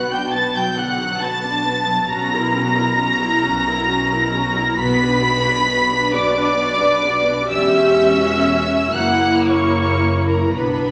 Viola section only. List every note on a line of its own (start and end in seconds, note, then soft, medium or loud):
0.00 0.12 B3 medium
0.00 2.09 F#4 medium
0.11 0.33 D4 medium
0.33 0.55 B3 medium
0.55 0.77 F#3 medium
0.78 1.00 D3 medium
1.00 1.22 F#3 medium
1.21 1.43 B3 medium
1.43 1.65 D4 medium
1.66 1.88 B3 medium
1.88 2.10 F#3 medium
2.10 2.31 C#4 medium
2.10 2.31 F#4 medium
2.32 2.54 E4 medium
2.32 2.55 A#4 medium
2.54 2.77 C#4 medium
2.54 2.77 F#4 medium
2.76 2.99 E4 medium
2.76 2.98 A#4 medium
2.98 3.19 C#4 medium
2.98 3.19 F#4 medium
3.21 3.43 E4 medium
3.21 3.43 A#4 medium
3.43 3.66 C#4 medium
3.43 3.66 F#4 medium
3.66 3.89 E4 medium
3.66 3.89 A#4 medium
3.89 4.10 C#4 medium
3.89 4.10 F#4 medium
4.11 4.34 E4 medium
4.11 4.34 A#4 medium
4.34 4.57 C#4 medium
4.34 4.57 F#4 medium
4.57 4.79 E4 medium
4.57 4.79 A#4 medium
4.79 4.99 B3 medium
4.79 4.99 F#4 medium
5.00 5.23 D4 medium
5.00 5.23 B4 medium
5.23 5.45 B3 medium
5.23 5.45 F#4 medium
5.45 5.68 D4 medium
5.45 5.68 B4 medium
5.68 5.89 B3 medium
5.68 5.89 F#4 medium
5.90 6.13 D4 medium
5.90 6.13 B4 medium
6.13 6.36 B3 medium
6.13 6.36 F#4 medium
6.35 6.58 D4 medium
6.35 6.58 B4 medium
6.57 6.79 B3 medium
6.57 6.79 F#4 medium
6.79 7.03 D4 medium
6.79 7.03 B4 medium
7.02 7.26 B3 medium
7.02 7.26 F#4 medium
7.25 7.49 D4 medium
7.25 7.49 B4 medium
7.48 8.89 C#4 loud
7.48 8.15 G4 medium
8.19 8.94 F#4 medium
8.93 10.55 A#3 medium
8.93 10.55 E4 medium
10.54 10.91 B3 medium
10.54 10.91 D4 medium